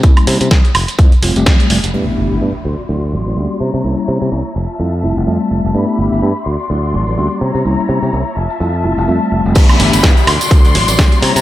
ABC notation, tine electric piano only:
X:1
M:4/4
L:1/16
Q:"Swing 16ths" 1/4=126
K:Dmix
V:1 name="Tine electric piano"
[G,_B,_DE]4 [G,DG] z3 [G,A,CE] z [G,A,C=F] [G,A,CG]3 [G,A,CF] z | [A,B,DE]4 [A,B,DG] z3 [F,A,CE] z [F,A,CE]2 [G,_B,^CG]4 | [G,_B,_DE]4 [G,B,DG] z3 [G,A,CE] z [G,A,CE]2 [G,A,C=F]4 | [A,B,DE]4 [A,B,DG] z3 [F,A,CE] z [F,A,CE]2 [G,_B,^CG]4 |
[G,_B,_DE]4 [G,B,DG] z3 [G,A,CE] z [G,A,CE]2 [G,A,C=F]4 | [E,A,B,D]4 [E,A,E] z3 [F,A,CE] z [F,A,CE]2 [G,_B,^CG]4 |]